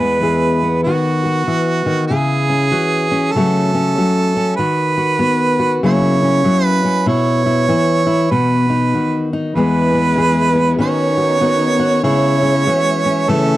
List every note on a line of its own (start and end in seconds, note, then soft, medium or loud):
0.00 0.85 E2 medium
0.00 0.21 E3 medium
0.00 0.82 G#3 medium
0.00 0.61 B3 soft
0.00 0.22 G#4 medium
0.00 0.80 B4 medium
0.22 0.81 E3 medium
0.22 0.82 G#4 medium
0.63 2.48 B3 medium
0.83 1.47 D#3 medium
0.83 2.04 F#4 medium
0.83 1.24 F#4 medium
1.25 2.07 F#4 medium
1.47 1.85 E3 medium
1.86 2.09 D#3 medium
2.07 2.72 C#3 medium
2.07 3.33 G#4 medium
2.11 2.71 E4 medium
2.50 3.11 C#4 medium
2.71 3.30 E3 medium
2.71 3.31 F#4 medium
3.11 3.37 C#4 medium
3.32 3.96 C#3 medium
3.32 4.56 A4 medium
3.36 3.98 F#3 medium
3.36 4.57 A3 medium
3.36 3.73 C#4 medium
3.36 3.98 F#4 medium
3.75 4.35 C#4 medium
3.98 4.58 F#3 medium
3.98 4.59 F#4 medium
4.37 4.56 C#4 medium
4.56 5.80 D#3 medium
4.56 4.97 F#4 medium
4.56 5.78 B4 loud
4.97 5.20 F#4 medium
5.19 5.79 B3 medium
5.19 5.59 F#4 medium
5.59 5.85 F#4 medium
5.83 6.45 C#3 medium
5.83 6.43 F#3 medium
5.83 7.05 A#3 medium
5.83 6.22 C#4 medium
5.83 6.44 E4 medium
5.83 6.66 C#5 loud
6.23 6.83 C#4 medium
6.44 7.04 F#3 medium
6.44 7.06 E4 medium
6.66 7.04 B4 loud
6.85 7.05 C#4 medium
7.06 7.69 B2 medium
7.06 7.45 E4 medium
7.06 8.32 C#5 loud
7.46 7.68 E4 medium
7.69 8.28 E3 medium
7.69 8.05 E4 medium
8.07 8.31 E4 medium
8.31 8.94 B2 medium
8.31 8.93 F#4 medium
8.31 9.32 B4 medium
8.70 9.32 D#4 medium
8.94 9.53 D#3 medium
8.94 9.53 F#4 soft
9.33 9.54 D#4 medium
9.54 10.80 E2 medium
9.54 10.16 E3 medium
9.54 10.79 G#3 medium
9.54 10.78 G#3 medium
9.54 9.93 B3 medium
9.54 10.79 E4 medium
9.54 10.17 G#4 medium
9.54 10.76 B4 loud
9.54 10.79 B4 medium
9.94 10.54 B3 medium
10.17 10.77 E3 medium
10.17 10.77 G#4 medium
10.55 10.77 B3 medium
10.79 12.01 D#3 medium
10.79 12.03 D#3 medium
10.79 11.40 B3 medium
10.79 12.03 B3 medium
10.79 12.42 C#4 medium
10.79 12.03 D#4 medium
10.79 11.16 F#4 medium
10.79 13.26 C#5 medium
10.79 12.01 C#5 loud
11.17 11.41 F#4 medium
11.41 12.01 B3 medium
11.41 11.78 F#4 medium
11.79 12.01 F#4 medium
12.03 12.66 C#3 medium
12.03 13.28 G#3 medium
12.03 12.67 E4 medium
12.03 13.30 C#5 loud
12.03 13.57 E5 medium
12.43 13.05 C#4 medium
12.67 13.29 E3 medium
12.67 13.26 F#4 medium
13.06 13.30 C#4 medium
13.28 13.57 C#3 medium
13.28 13.57 E3 medium
13.28 13.57 A3 medium
13.28 13.57 C#4 medium
13.28 13.57 A4 medium
13.28 13.57 C#5 medium